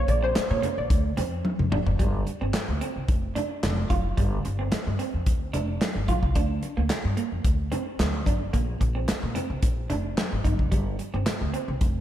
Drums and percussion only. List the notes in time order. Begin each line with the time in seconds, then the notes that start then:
0.08 kick, closed hi-hat, muted conga
0.35 snare, clap, closed hi-hat, high conga
0.63 closed hi-hat, low conga
0.90 kick, closed hi-hat, muted conga
1.17 closed hi-hat, muted conga, low conga
1.45 high tom, high conga
1.59 mid tom
1.72 mid tom, high conga
1.87 floor tom
1.99 kick, closed hi-hat, muted conga
2.27 closed hi-hat, muted conga
2.54 snare, clap, closed hi-hat, high conga
2.81 closed hi-hat
3.08 kick, closed hi-hat, muted conga
3.36 closed hi-hat, muted conga, low conga
3.63 snare, clap, closed hi-hat, high conga
3.90 kick, closed hi-hat, high conga
4.18 kick, closed hi-hat, muted conga
4.45 closed hi-hat
4.72 snare, clap, closed hi-hat, high conga
4.99 closed hi-hat
5.26 kick, closed hi-hat, muted conga
5.54 closed hi-hat, muted conga, low conga
5.81 snare, clap, closed hi-hat, high conga
6.08 kick, closed hi-hat, high conga
6.23 kick
6.35 kick, closed hi-hat, muted conga
6.62 closed hi-hat, muted conga
6.90 snare, clap, closed hi-hat, high conga
7.17 closed hi-hat
7.44 kick, closed hi-hat, muted conga
7.72 closed hi-hat, muted conga, low conga
8.00 snare, clap, closed hi-hat, high conga
8.26 kick, closed hi-hat, high conga
8.53 kick, closed hi-hat, muted conga
8.81 kick, closed hi-hat
9.08 snare, clap, closed hi-hat, high conga
9.35 closed hi-hat, low conga
9.62 kick, closed hi-hat, muted conga
9.90 closed hi-hat, muted conga, low conga
10.18 snare, clap, closed hi-hat, high conga
10.44 kick, closed hi-hat, high conga
10.59 kick
10.72 kick, closed hi-hat, muted conga
10.99 closed hi-hat, muted conga
11.26 snare, clap, closed hi-hat, high conga
11.54 closed hi-hat
11.81 kick, closed hi-hat, muted conga